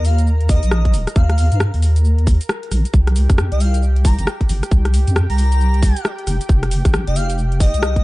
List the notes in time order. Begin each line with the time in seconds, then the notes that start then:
Already playing: D#2 A#4 A#5
0.05 F5, open hi-hat, cabasa
0.18 closed hi-hat, cabasa
0.27 cabasa
0.41 closed hi-hat
0.49 D#5, kick, open hi-hat, cabasa
0.63 A#1, closed hi-hat, cabasa
0.71 cross-stick, cabasa
0.85 kick, closed hi-hat
0.94 D#1, open hi-hat, cabasa
1.07 cross-stick, closed hi-hat, cabasa
1.16 D#2 F5, kick, cabasa
1.30 F5, cross-stick, closed hi-hat
1.38 F5, open hi-hat, cabasa
1.52 G2 F5, closed hi-hat, cabasa
1.60 cross-stick, cabasa
1.74 D#2, open hi-hat
1.82 open hi-hat, cabasa
1.96 closed hi-hat, cabasa
2.05 cabasa
2.18 closed hi-hat
2.27 kick, open hi-hat, cabasa
2.41 closed hi-hat, cabasa
2.49 cross-stick, cabasa
2.63 closed hi-hat
2.71 A#1, cross-stick, open hi-hat, cabasa
2.85 closed hi-hat, cabasa
2.93 C2 G4 G5, kick, cabasa
3.07 cross-stick, closed hi-hat
3.16 open hi-hat, cabasa
3.30 F2, kick, cross-stick, closed hi-hat, cabasa
3.38 cross-stick, cabasa
3.52 C2 D#5, closed hi-hat
3.60 F5, open hi-hat, cabasa
3.74 closed hi-hat, cabasa
3.83 cabasa
3.96 closed hi-hat
4.05 A#5, kick, open hi-hat, cabasa
4.18 G1 A#5, closed hi-hat, cabasa
4.27 cross-stick, cabasa
4.41 kick, closed hi-hat
4.49 G1, open hi-hat, cabasa
4.63 cross-stick, closed hi-hat, cabasa
4.71 C2, kick, cabasa
4.85 cross-stick, closed hi-hat
4.94 open hi-hat, cabasa
5.07 F2, closed hi-hat, cabasa
5.16 cross-stick, cabasa
5.30 C2 A#5, open hi-hat
5.38 A#5, open hi-hat, cabasa
5.52 closed hi-hat, cabasa
5.60 cabasa
5.74 closed hi-hat
5.83 kick, open hi-hat, cabasa
5.96 closed hi-hat, cabasa
6.05 cross-stick, cabasa
6.18 closed hi-hat
6.27 F1, cross-stick, open hi-hat, cabasa
6.41 closed hi-hat, cabasa
6.49 F1, kick, cabasa
6.63 cross-stick, closed hi-hat
6.71 open hi-hat, cabasa
6.85 A1, kick, cross-stick, closed hi-hat, cabasa
6.94 cross-stick, cabasa
7.07 F1 D#5, closed hi-hat
7.16 F5, open hi-hat, cabasa
7.30 closed hi-hat, cabasa
7.38 cabasa
7.52 closed hi-hat
7.60 D#5, kick, open hi-hat, cabasa
7.74 C2, closed hi-hat, cabasa
7.83 cross-stick, cabasa
7.96 kick, closed hi-hat